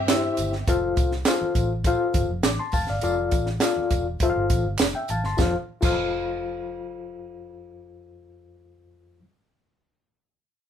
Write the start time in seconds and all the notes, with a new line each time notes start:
Already playing: G2 C4 G4 E5
0.08 E4 G4 C5 E5, snare, clap, closed hi-hat, tambourine, high conga
0.37 G1, closed hi-hat, tambourine, muted conga, high conga, low conga
0.53 snare
0.67 F1 F4 A4 C5 F5, kick, closed hi-hat, tambourine, muted conga, low conga
0.81 high conga
0.96 C2, kick, closed hi-hat, tambourine, muted conga, high conga
1.12 snare
1.25 F4 G#4 C5 F5, snare, clap, closed hi-hat, tambourine, muted conga
1.34 A4
1.41 muted fingered electric bass stroke, high conga
1.55 A1, kick, closed hi-hat, tambourine, low conga
1.84 F4 A4 C5 F5, kick, closed hi-hat, tambourine, muted conga
2.14 G1, kick, closed hi-hat, tambourine, high conga
2.29 F1
2.43 A1 D6, snare, clap, closed hi-hat, tambourine, high conga
2.59 A5 C6
2.72 F1 F5 A5, kick, open hi-hat, tambourine, high conga, low conga
2.87 G1 D5 F5, snare
3.02 F1 F4 A4 D5 F5, closed hi-hat, tambourine, muted conga, low conga
3.17 high conga
3.31 A1, kick, closed hi-hat, tambourine, high conga
3.46 snare
3.60 F4 A4 D5 F5, snare, clap, closed hi-hat, tambourine
3.76 muted fingered electric bass stroke, high conga
3.90 E1, kick, closed hi-hat, tambourine, muted conga, low conga
4.20 F1 F4 A4 C5 E5, kick, closed hi-hat, muted conga
4.30 F5
4.36 G1
4.50 A1, kick, closed hi-hat, tambourine, high conga
4.65 G1
4.79 F1, snare, clap, closed hi-hat, tambourine, muted conga, high conga
4.95 E5 G5
5.08 A1 F5 A5, closed hi-hat, tambourine, high conga, low conga
5.24 G1 A5 C6, snare
5.37 F1 F2 F4 A4 C5, kick, snare, tambourine, high conga
5.42 F5
5.81 F1 F2 F4 A4 C5, kick, crash, tambourine, high conga
5.85 F5